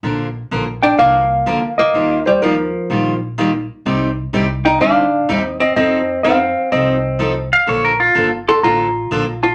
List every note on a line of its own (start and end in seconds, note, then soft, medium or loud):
0.03 0.41 A#1 medium
0.03 0.26 D3 medium
0.03 0.26 F3 medium
0.03 0.27 A#3 medium
0.03 0.27 D4 medium
0.03 0.27 A#4 medium
0.51 0.92 A#1 medium
0.51 0.63 D3 medium
0.51 0.63 F3 medium
0.51 0.63 A#3 medium
0.51 0.64 D4 medium
0.51 0.64 A#4 medium
0.82 0.98 D4 medium
0.82 0.97 G5 medium
0.99 1.39 C2 medium
0.99 1.22 D3 soft
0.99 1.22 F3 medium
0.99 1.75 A#3 medium
0.99 1.22 A#3 medium
0.99 1.22 D4 medium
0.99 1.22 A#4 medium
0.99 1.81 F5 loud
1.46 1.87 D2 medium
1.46 1.58 D3 medium
1.46 1.59 F3 medium
1.46 1.59 A#3 medium
1.46 1.59 D4 medium
1.46 1.59 A#4 medium
1.78 2.23 A#3 medium
1.78 2.23 D#5 medium
1.94 2.70 D#2 medium
1.94 2.17 D#3 medium
1.94 2.17 G3 soft
1.94 2.17 A#3 medium
1.94 2.18 F4 medium
1.94 2.17 G4 medium
2.26 2.41 G3 medium
2.26 2.42 C5 medium
2.42 2.54 D#3 medium
2.42 3.18 F3 medium
2.42 2.54 G3 medium
2.42 2.54 A#3 medium
2.42 2.54 F4 medium
2.42 2.55 G4 medium
2.42 3.18 A#4 medium
2.90 3.66 A#1 medium
2.90 3.13 D#3 medium
2.90 3.13 G3 medium
2.90 3.13 A#3 medium
2.90 3.13 F4 medium
2.90 3.13 G4 medium
3.38 3.50 D#3 medium
3.38 3.50 G3 medium
3.38 3.50 A#3 medium
3.38 3.50 F4 medium
3.38 3.50 G4 medium
3.85 4.24 C2 medium
3.85 4.08 C3 medium
3.85 4.08 G3 soft
3.85 4.08 C4 medium
3.85 4.08 D#4 medium
3.85 4.09 G4 medium
3.85 4.09 D5 medium
4.33 4.74 C2 medium
4.33 4.45 C3 medium
4.33 4.45 G3 medium
4.33 4.45 C4 medium
4.33 4.46 D#4 medium
4.33 4.46 G4 medium
4.33 4.46 D5 medium
4.65 4.80 D#4 medium
4.65 4.81 G5 loud
4.81 5.21 D2 medium
4.81 5.04 C3 soft
4.81 5.04 G3 medium
4.81 5.04 C4 medium
4.81 5.37 D4 medium
4.81 5.04 D#4 medium
4.81 5.04 G4 medium
4.81 5.04 D5 medium
4.81 5.43 F5 loud
5.29 5.70 D#2 medium
5.29 5.41 C3 medium
5.29 5.41 G3 medium
5.29 5.41 C4 medium
5.29 5.41 D#4 medium
5.29 5.41 G4 medium
5.29 5.41 D5 medium
5.37 5.57 C4 medium
5.43 5.61 D#5 loud
5.60 5.75 C4 medium
5.60 5.75 D#5 medium
5.76 6.53 F2 medium
5.76 5.99 F3 medium
5.76 5.99 C4 medium
5.76 6.21 C4 medium
5.76 5.99 D#4 medium
5.76 5.99 A4 medium
5.76 6.21 D#5 medium
6.23 6.36 F3 medium
6.23 6.36 C4 medium
6.23 6.69 C4 medium
6.23 6.37 D#4 medium
6.23 6.37 A4 medium
6.23 6.73 F5 medium
6.72 7.49 C2 medium
6.72 6.95 F3 medium
6.72 7.48 C4 medium
6.72 6.95 C4 medium
6.72 6.96 D#4 medium
6.72 6.95 A4 medium
6.72 7.48 D#5 medium
7.19 7.32 F3 medium
7.19 7.32 C4 medium
7.19 7.32 D#4 medium
7.19 7.32 A4 medium
7.53 7.68 F5 medium
7.67 8.06 A#1 medium
7.67 7.90 D3 medium
7.67 7.90 F3 medium
7.67 7.90 A#3 medium
7.67 7.90 D4 medium
7.67 7.90 A4 medium
7.67 7.84 C#5 medium
7.85 8.00 A#4 medium
8.00 8.31 F4 medium
8.15 8.56 G1 medium
8.15 8.27 D3 medium
8.15 8.27 F3 medium
8.15 8.27 A#3 medium
8.15 8.28 D4 medium
8.15 8.28 A4 medium
8.48 8.63 A4 medium
8.48 8.63 C6 medium
8.63 9.04 A1 medium
8.63 8.86 D3 medium
8.63 8.86 F3 soft
8.63 8.87 A#3 medium
8.63 8.87 D4 medium
8.63 9.40 F4 medium
8.63 8.87 A4 medium
8.63 9.42 A#5 medium
9.11 9.52 A#1 medium
9.11 9.23 D3 medium
9.11 9.23 F3 medium
9.11 9.23 A#3 medium
9.11 9.24 D4 medium
9.11 9.24 A4 medium
9.43 9.55 F4 medium
9.43 9.55 A5 medium